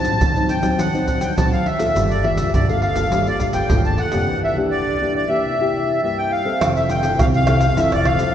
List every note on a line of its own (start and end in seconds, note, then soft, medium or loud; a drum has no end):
0.00 0.18 D3 medium
0.00 0.18 F#3 medium
0.00 0.18 C4 medium
0.00 0.18 D#4 medium
0.00 0.53 A5 medium
0.04 0.17 A1 medium
0.04 pandeiro medium
0.04 shaker medium
0.20 0.76 A2 soft
0.20 0.58 D3 medium
0.20 pandeiro medium
0.20 shaker medium
0.20 surdo medium
0.36 0.60 F#3 medium
0.36 0.60 C4 medium
0.36 0.60 D#4 medium
0.36 pandeiro soft
0.36 shaker soft
0.49 0.80 G5 medium
0.49 pandeiro medium
0.49 shaker medium
0.62 1.13 D2 medium
0.62 0.88 F#3 medium
0.62 0.88 C4 medium
0.62 0.88 D#4 medium
0.62 pandeiro medium
0.62 shaker medium
0.79 1.34 D3 medium
0.79 1.06 F#5 medium
0.79 pandeiro medium
0.79 shaker medium
0.79 surdo soft
0.94 1.33 F#3 medium
0.94 1.33 C4 medium
0.94 1.33 D#4 medium
0.94 pandeiro soft
0.94 shaker soft
1.08 1.23 F#5 medium
1.08 pandeiro medium
1.08 shaker medium
1.08 surdo medium
1.21 1.34 D2 medium
1.21 1.35 G5 medium
1.21 pandeiro medium
1.21 shaker medium
1.37 1.62 D2 medium
1.37 1.93 A2 medium
1.37 1.76 F#3 soft
1.37 1.76 C4 soft
1.37 1.77 D#4 medium
1.37 1.52 A5 medium
1.37 pandeiro medium
1.37 shaker medium
1.37 surdo medium
1.53 1.67 F5 medium
1.53 pandeiro soft
1.53 shaker soft
1.66 2.11 E5 medium
1.66 pandeiro medium
1.79 1.92 D2 medium
1.79 2.19 A#3 medium
1.79 2.19 F4 medium
1.79 2.19 A4 medium
1.79 pandeiro medium
1.79 shaker medium
1.95 2.39 G1 medium
1.95 2.51 G3 medium
1.95 pandeiro medium
1.95 shaker medium
1.95 surdo medium
2.10 2.25 D5 medium
2.10 pandeiro soft
2.10 shaker soft
2.23 2.52 A#3 medium
2.23 2.52 F4 medium
2.23 2.52 A4 medium
2.23 2.51 E5 medium
2.23 pandeiro medium
2.37 2.50 D2 medium
2.37 pandeiro medium
2.37 shaker medium
2.54 2.91 G2 medium
2.54 3.09 D3 medium
2.54 2.67 D5 medium
2.54 pandeiro medium
2.54 shaker medium
2.54 surdo medium
2.69 2.93 A#3 medium
2.69 2.93 F4 medium
2.69 2.93 A4 medium
2.69 2.81 F5 medium
2.69 pandeiro soft
2.69 shaker soft
2.82 3.27 F5 medium
2.82 pandeiro medium
2.96 3.46 G1 medium
2.96 3.21 A#3 medium
2.96 3.21 F4 medium
2.96 3.21 A4 medium
2.96 pandeiro medium
2.96 shaker medium
3.12 3.67 G3 medium
3.12 pandeiro medium
3.12 shaker medium
3.12 surdo soft
3.27 3.66 A#3 medium
3.27 3.66 F4 medium
3.27 3.66 A4 medium
3.27 3.42 D5 medium
3.27 pandeiro soft
3.27 shaker soft
3.40 3.47 F5 medium
3.40 pandeiro medium
3.40 shaker medium
3.40 surdo medium
3.53 3.67 G1 medium
3.53 3.82 G5 medium
3.53 pandeiro medium
3.53 shaker medium
3.70 3.95 G1 medium
3.70 4.26 D3 medium
3.70 4.09 A#3 soft
3.70 4.10 F4 medium
3.70 4.10 A4 medium
3.70 pandeiro medium
3.70 shaker medium
3.70 surdo medium
3.85 4.00 A5 medium
3.85 pandeiro soft
3.85 shaker soft
3.98 4.40 F#5 medium
3.98 pandeiro medium
4.12 4.25 F1 medium
4.12 4.52 A#3 medium
4.12 4.52 D4 medium
4.12 4.52 G4 medium
4.12 pandeiro medium
4.12 shaker medium
4.28 4.84 E3 medium
4.44 4.57 E5 medium
4.57 4.96 A#3 soft
4.57 4.96 D4 medium
4.57 4.97 G4 medium
4.71 5.14 D5 medium
4.87 5.42 E3 soft
5.02 5.26 A#3 medium
5.02 5.26 D4 medium
5.02 5.26 G4 medium
5.15 5.29 D5 medium
5.28 5.54 A#3 medium
5.28 5.54 E4 medium
5.28 5.54 G4 medium
5.28 6.01 E5 medium
5.45 6.00 C3 medium
5.60 5.99 A#3 medium
5.60 5.99 E4 medium
5.60 5.99 G4 medium
6.02 6.58 G2 medium
6.02 6.42 A#3 soft
6.02 6.42 E4 soft
6.02 6.42 G4 medium
6.02 6.18 E5 medium
6.18 6.31 G5 medium
6.32 6.73 F5 medium
6.45 6.85 C4 medium
6.45 6.85 E4 medium
6.45 6.85 A4 medium
6.61 7.20 F1 medium
6.61 7.17 F3 medium
6.61 pandeiro medium
6.61 tamborim medium
6.61 shaker medium
6.61 surdo medium
6.76 6.90 E5 medium
6.76 pandeiro soft
6.76 shaker soft
6.89 7.20 G5 medium
6.89 pandeiro medium
6.89 shaker medium
7.03 7.43 C4 medium
7.03 7.43 E4 medium
7.03 7.43 A4 medium
7.03 pandeiro medium
7.03 shaker medium
7.19 7.78 C2 medium
7.19 7.75 C3 soft
7.19 7.26 F5 medium
7.19 pandeiro medium
7.19 tamborim medium
7.19 shaker medium
7.19 surdo medium
7.34 7.80 F5 loud
7.34 pandeiro soft
7.34 shaker soft
7.47 7.65 C4 soft
7.47 7.65 E4 medium
7.47 7.66 A4 medium
7.47 pandeiro medium
7.47 tamborim medium
7.47 shaker medium
7.61 pandeiro medium
7.61 shaker medium
7.77 7.90 F1 medium
7.77 8.33 F3 medium
7.77 8.17 C4 medium
7.77 8.17 E4 medium
7.77 8.17 A4 medium
7.77 7.91 E5 medium
7.77 pandeiro medium
7.77 shaker medium
7.77 surdo medium
7.92 8.17 F1 medium
7.92 8.06 D5 medium
7.92 pandeiro soft
7.92 tamborim medium
7.92 shaker soft
8.05 8.33 F5 loud
8.05 pandeiro medium
8.05 tamborim medium
8.05 surdo medium
8.19 8.35 C4 medium
8.19 8.35 E4 medium
8.19 8.35 A4 medium
8.19 pandeiro medium
8.19 shaker medium